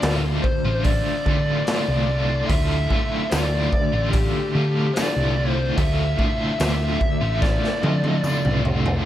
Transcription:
0.00 D2 D5, snare, open hi-hat
0.05 A2 D3 A3 F4
0.24 D3 A3 F4
0.43 C5, muted overdriven electric guitar stroke, kick
0.65 A1 D3 A3 F4
0.84 D5, kick, open hi-hat
1.26 A2 D3 A3 F4, kick
1.65 D2 A2 D3 D5, snare, open hi-hat
1.69 A3 F4
1.88 C2 D3 A3 F4
2.09 A2 D3 A3 F4
2.29 D3 A3 F4
2.46 D2 A2 D3 E5, kick, open hi-hat
2.51 A3 F4
2.90 A2 D3 A3 F4, kick
3.30 D2 A2 D3 A3 D5, snare, open hi-hat, tambourine
3.34 F4
3.52 D3 A3 F4
3.73 muted overdriven electric guitar stroke, kick
3.93 A1 D3 A3 F4
4.10 G4, kick, open hi-hat
4.54 A2 D3 A3 F4
4.94 D2 A2 D3 A3 F4 D5, snare, open hi-hat, tambourine
5.17 C2 D3 A3 F4
5.36 A2 D3 A3 F4
5.51 C5
5.56 D3 A3 F4
5.77 D2 A2 D3 A3 F4 E5, kick, open hi-hat
6.18 A2 D3 A3 F4, kick
6.59 D2 A2 D3 A3 F4 E5, snare, open hi-hat, tambourine
6.79 D3 A3 F4
7.01 muted overdriven electric guitar stroke, kick
7.21 A1 D3 A3 F4
7.41 D5, kick, snare
7.64 snare
7.82 A2 D3 A3 F4 D#5, high tom
7.95 D5
8.04 D#5, high tom
8.19 D2 D5
8.24 A2 D3 A3 F4, mid tom, tambourine
8.43 C2 D3 A3 F4, mid tom
8.64 A2 D3 A3 F4, floor tom
8.85 D3 A3 F4, floor tom

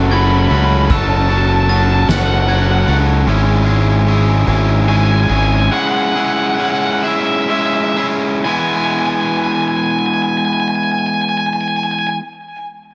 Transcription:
Already playing: F#1 F#2 A3 C#4 F#4 A4 F#5 E6 A6
0.10 C#3 F#3 A3 C#4 F#4 A4 B5 G#6, ride
0.21 B5
0.30 B5
0.37 B5
0.45 B5
0.50 C#2 C#4 F#4 A4 B5, ride
0.61 B5
0.70 B5
0.78 B5
0.85 B5
0.89 F#1 F#3 C#4 F#4 A4 A5 E6, kick, ride
1.00 A5
1.07 A5
1.14 A5
1.23 A5
1.29 C#4 F#4 A4 A5, ride
1.38 A5
1.46 A5
1.53 A5
1.60 A5
1.69 F#3 C#4 F#4 A4 A5 A6, ride
1.77 A5
1.84 A5
1.92 A5
1.99 A5
2.08 F#1 C#4 F#4 A4 F#5, snare, ride
2.16 F#5
2.26 F#5
2.32 F#5
2.39 F#5
2.47 F#3 C#4 F#4 A4 F#5 G#6, ride
2.55 F#5
2.62 F#5
2.71 F#5
2.79 F#5
2.86 C#2 C#4 F#4 A4 F#5, ride
3.27 G#1 G#3 C#4 E4 G#4
3.66 C#4 E4 G#4
4.07 G#3 C#4 E4 G#4
4.47 G#1 C#4 E4 G#4
4.88 G#3 C#4 E4 G#4 G#5
4.96 G#5
5.04 G#5
5.12 G#5
5.20 G#5
5.29 G#1 C#4 E4 G#4 G#5
5.36 G#5
5.44 G#5
5.52 G#5
5.60 G#5
5.72 G#3 C#4 E4 G#4 F#5
5.79 F#5
5.87 F#5
5.94 F#5
6.03 F#5
6.10 F#5
6.15 C#4 E4 G#4 F#5
6.25 F#5
6.31 F#5
6.39 F#5
6.47 F#5
6.54 F#5
6.59 G#3 C#4 E4 G#4 F#5
6.69 F#5
6.78 F#5
6.85 F#5
6.91 F#5
7.00 E5 F#5
7.04 C#4 E4 G#4
7.11 E5
7.19 E5
7.26 E5
7.35 E5
7.42 E5
7.49 G#3 C#4 E4 G#4 E5
7.58 E5
7.66 E5
7.74 E5
7.81 E5
7.89 E5
7.97 C#4 E4 G#4 E5
8.45 E3 G#3 B3 G#5
8.49 E4 G#5
8.59 G#5
8.68 G#5
8.75 G#5
8.84 G#5
8.91 G#5
8.99 G#5
9.06 G#5
9.14 G#5
9.21 G#5
9.29 G#5
9.37 G#5
9.44 G#5
9.52 G#5
9.61 G#5
9.68 G#5
9.77 G#5
9.83 G#5
9.91 G#5
9.99 G#5
10.06 G#5
10.14 G#5
10.22 G#5
10.29 G#5
10.37 G#5
10.45 G#5
10.53 G#5
10.60 G#5
10.68 G#5
10.75 G#5
10.84 G#5
10.92 G#5
10.99 G#5
11.06 G#5
11.14 G#5
11.21 G#5
11.29 G#5
11.37 G#5
11.46 G#5
11.53 G#5
11.61 G#5
11.68 G#5
11.76 G#5
11.83 G#5
11.91 G#5
11.99 G#5
12.07 G#5

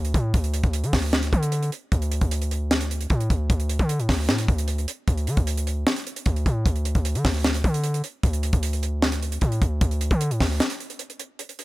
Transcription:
Already playing: D2
0.05 closed hi-hat
0.14 A2, kick, closed hi-hat
0.34 D2, kick, closed hi-hat
0.44 closed hi-hat
0.54 closed hi-hat
0.63 D2, kick, closed hi-hat
0.73 closed hi-hat
0.83 D3, closed hi-hat
0.93 D2, kick, snare, open hi-hat
1.13 snare, hi-hat pedal
1.23 closed hi-hat
1.33 D3, kick, closed hi-hat
1.43 closed hi-hat
1.52 closed hi-hat
1.63 closed hi-hat
1.72 closed hi-hat
1.92 D2, kick, closed hi-hat
2.02 closed hi-hat
2.12 closed hi-hat
2.21 D2, kick, closed hi-hat
2.31 closed hi-hat
2.42 closed hi-hat
2.51 closed hi-hat
2.71 snare
2.81 closed hi-hat
2.91 closed hi-hat
3.01 closed hi-hat
3.10 A2, kick, closed hi-hat
3.20 closed hi-hat
3.30 D2, kick, closed hi-hat
3.50 D2, kick, closed hi-hat
3.60 closed hi-hat
3.69 closed hi-hat
3.79 D3, kick, closed hi-hat
3.89 closed hi-hat
3.99 A2, closed hi-hat
4.09 D2, kick, snare, open hi-hat
4.29 A2, snare, hi-hat pedal
4.38 closed hi-hat
4.48 D2, kick, closed hi-hat
4.58 closed hi-hat
4.68 closed hi-hat
4.78 closed hi-hat
4.88 closed hi-hat
5.08 D2, kick, closed hi-hat
5.18 closed hi-hat
5.27 D3, closed hi-hat
5.37 D2, kick, closed hi-hat
5.47 closed hi-hat
5.57 closed hi-hat
5.67 closed hi-hat
5.87 snare
5.96 closed hi-hat
6.07 closed hi-hat
6.16 closed hi-hat
6.26 D2, kick, closed hi-hat
6.36 closed hi-hat
6.46 A2, kick, closed hi-hat
6.66 D2, kick, closed hi-hat
6.76 closed hi-hat
6.85 closed hi-hat
6.95 D2, kick, closed hi-hat
7.05 closed hi-hat
7.15 D3, closed hi-hat
7.25 D2, kick, snare, open hi-hat
7.44 snare, hi-hat pedal
7.54 closed hi-hat
7.64 D3, kick, closed hi-hat
7.74 closed hi-hat
7.84 closed hi-hat
7.94 closed hi-hat
8.04 closed hi-hat
8.23 D2, kick, closed hi-hat
8.33 closed hi-hat
8.43 closed hi-hat
8.53 D2, kick, closed hi-hat
8.63 closed hi-hat
8.73 closed hi-hat
8.83 closed hi-hat
9.02 snare
9.12 closed hi-hat
9.22 closed hi-hat
9.32 closed hi-hat
9.41 A2, kick, closed hi-hat
9.52 closed hi-hat
9.62 D2, kick, closed hi-hat
9.81 D2, kick, closed hi-hat
9.91 closed hi-hat
10.01 closed hi-hat
10.11 D3, kick, closed hi-hat
10.21 closed hi-hat
10.31 A2, closed hi-hat
10.40 D2, kick, snare, open hi-hat
10.60 snare, hi-hat pedal
10.70 closed hi-hat
10.80 closed hi-hat
10.90 closed hi-hat
10.99 closed hi-hat
11.10 closed hi-hat
11.19 closed hi-hat
11.39 closed hi-hat
11.49 closed hi-hat
11.59 closed hi-hat

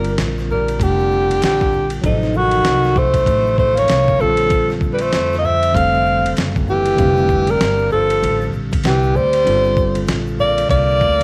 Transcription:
Already playing: G1 D3 G3 C4 F4 A#4
0.04 ride, shaker
0.18 A#1, snare, hi-hat pedal, ride, high conga, shaker
0.38 snare, shaker
0.50 G3 A#4, low conga, shaker
0.68 ride, shaker
0.80 F1 D3 G4, kick, ride, shaker
0.99 shaker
1.11 shaker
1.30 ride, high conga, shaker
1.42 A#1 D3 G4, snare, hi-hat pedal, ride, shaker
1.60 kick, high conga, shaker
1.73 low conga, shaker
1.90 ride, shaker
2.01 A1 C3 F3 F#3 D#4, kick, ride, shaker
2.06 A4
2.22 snare, shaker
2.34 D#3 F#4, high conga, shaker
2.51 ride, shaker
2.65 C2, snare, hi-hat pedal, ride, high conga, shaker
2.84 snare, shaker
2.96 A3 C5, kick, low conga, shaker
3.14 kick, ride, shaker
3.26 A1, kick, ride, shaker
3.47 shaker
3.58 A3 C5, kick, shaker
3.76 A#3 C#5, ride, high conga, shaker
3.88 C2, snare, hi-hat pedal, ride, shaker
4.08 kick, high conga, shaker
4.18 A#1 D3 F3 G3 C4 F4 A4, low conga, shaker
4.22 A4
4.37 ride, shaker
4.50 kick, ride, shaker
4.70 snare, shaker
4.81 kick, high conga, shaker
4.93 G3 B4
4.99 A3 C5, ride, shaker
5.13 F2, snare, hi-hat pedal, ride, high conga, shaker
5.33 snare, shaker
5.38 A#3 D#5
5.44 C4 E5, low conga, shaker
5.63 ride, shaker
5.72 F1 D3 G3 C4 F5, kick, shaker
5.77 A4, ride
5.94 shaker
6.06 shaker
6.24 ride, high conga, shaker
6.36 F#1, snare, hi-hat pedal, ride, shaker
6.56 kick, high conga, shaker
6.68 E3 G4, low conga, shaker
6.85 ride, shaker
6.96 F1 D3 G3 C4 F5, kick, ride, shaker
7.00 G4
7.17 shaker
7.29 kick, high conga, shaker
7.47 G3 A#4, ride, high conga, shaker
7.60 G1, snare, hi-hat pedal, ride, shaker
7.79 shaker
7.91 F3 A4, low conga, shaker
8.10 ride, shaker
8.22 A1, ride, low conga, shaker
8.41 shaker
8.53 A#1, shaker
8.72 kick, ride, high conga, shaker
8.84 C2 E3 G4, snare, hi-hat pedal, ride, shaker
9.03 shaker
9.15 D2 G3 C5, low conga, shaker
9.33 ride, shaker
9.44 G1 D3 G3 C4 F4, ride, shaker
9.48 A4
9.64 shaker
9.77 kick, high conga, shaker
9.95 ride, high conga, shaker
10.07 A#1, snare, hi-hat pedal, ride, shaker
10.27 shaker
10.39 A#3 D5, low conga, shaker
10.58 ride, shaker
10.69 C2 A#3 D5, kick, ride, low conga, shaker
10.89 shaker
11.01 D2, kick, shaker
11.20 high conga, shaker

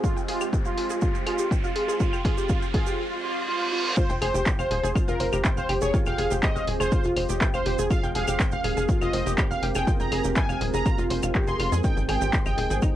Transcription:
Already playing: G#3 C4 F4 G4 C5, riser
0.04 F4, kick, shaker
0.16 G5, shaker
0.28 F4 G#4, open hi-hat
0.41 G4, claves, shaker
0.53 G5, kick, shaker
0.65 F4 F5, shaker
0.77 G#4, open hi-hat
0.90 G#4, shaker
1.01 F4, kick, shaker
1.15 G5, shaker
1.27 F4 G#4, open hi-hat, claves
1.39 G4, shaker
1.51 G5, kick, shaker
1.64 F4 F5, shaker
1.76 G#4, open hi-hat
1.88 G#4, shaker
2.00 F4, kick, shaker
2.13 G5, claves, shaker
2.25 F4 G#4, kick, open hi-hat
2.38 G4, shaker
2.49 F4, kick, shaker
2.62 G5, shaker
2.74 F4 G#4, kick, open hi-hat
2.86 G4, shaker
2.99 F4, reverse cymbal
3.23 F4
3.48 F4
3.72 F4
3.97 G#3 C4 F4 G4 C5 F5, kick, shaker
4.10 F1 G5 G6, shaker
4.22 F1 G#4 C5 G#5, open hi-hat, claves
4.34 F1 G4 G5, shaker
4.46 G5 G6, kick, clap, shaker
4.59 F1 C5 F5 F6, claves, shaker
4.71 D#1 G#4 G#5, open hi-hat
4.83 F1 G#4 G#5, shaker
4.95 F4 F5, kick, claves, shaker
5.08 F1 F4 A#4 F5, shaker
5.20 F1 C5 C6, open hi-hat
5.33 F1 G4 G5, claves, shaker
5.45 G5 G6, kick, clap, shaker
5.57 F1 C5 F5 F6, shaker
5.69 F1 G4 G5, open hi-hat, claves
5.81 F1 G#4 C#5 G#5, shaker
5.94 F4 F5, kick, shaker
6.06 F1 F5 G5 G6, claves, shaker
6.18 F1 G#4 G#5, open hi-hat
6.31 F1 G4 G5, shaker
6.43 D#5 G5 G6, kick, clap, claves, shaker
6.56 F1 F5 F6, shaker
6.68 D#1 G#4 G#5, open hi-hat
6.80 F1 G#4 C5 G#5, claves, shaker
6.92 F4 F5, kick, shaker
7.04 F1 F4 F5, shaker
7.17 F1 C5 C6, open hi-hat, claves
7.29 F1 G4 G5, shaker
7.41 G5 G6, kick, clap, shaker
7.54 F1 C5 F5 F6, claves, shaker
7.66 F1 G4 G5, open hi-hat
7.79 F1 G#4 G#5, shaker
7.90 F4 A#4 F5, kick, claves, shaker
8.03 F1 G5 G6, shaker
8.15 F1 G#4 F5 G#5, open hi-hat
8.27 F1 G4 G5, claves, shaker
8.40 G5 G6, kick, clap, shaker
8.51 F1 F5 F6, shaker
8.64 D#1 G#4 G#5, open hi-hat, claves
8.77 F1 G#4 G#5, shaker
8.89 F4 F5, kick, shaker
9.01 F1 F4 D#5 F5, claves, shaker
9.13 F1 C5 C6, open hi-hat
9.26 F1 G4 G5, shaker
9.38 G5 G6, kick, clap, claves, shaker
9.51 F1 F5 F6, shaker
9.63 F1 G4 G5, open hi-hat
9.75 F1 G#4 G5 G#5, claves, shaker
9.87 F4 F5, kick, shaker
10.00 F1 G5 A#5 G6, shaker
10.12 F1 G#4 G#5, open hi-hat, claves
10.24 F1 G4 G5, shaker
10.36 G5 G#5 G6, kick, clap, shaker
10.49 F1 F5 F6, claves, shaker
10.61 D#1 G#4 G#5, open hi-hat
10.74 F1 G#4 G#5 A#5, shaker
10.86 F4 F5, kick, claves, shaker
10.98 F1 F4 F5, shaker
11.10 F1 C5 C6, open hi-hat
11.23 F1 F4 F5, claves, shaker
11.34 G4 G5, kick, clap, shaker
11.47 F1 G#4 G#5 C6, shaker
11.59 F1 F4 F5, open hi-hat, claves
11.72 F2 G#4 G#5, shaker
11.84 D#4 G4 C5 D#5 G5, kick, shaker
11.97 G#1 G5 G6, shaker
12.08 G#1 G#4 G5 G#5, open hi-hat, claves
12.21 G#1 G4 G5, shaker
12.33 G5 G6, kick, clap, shaker
12.46 G#1 D#5 G5 D#6, claves, shaker
12.58 D#1 G#4 G#5, open hi-hat
12.70 G#1 G#4 G#5, shaker
12.82 D#4 D#5, kick, claves, shaker

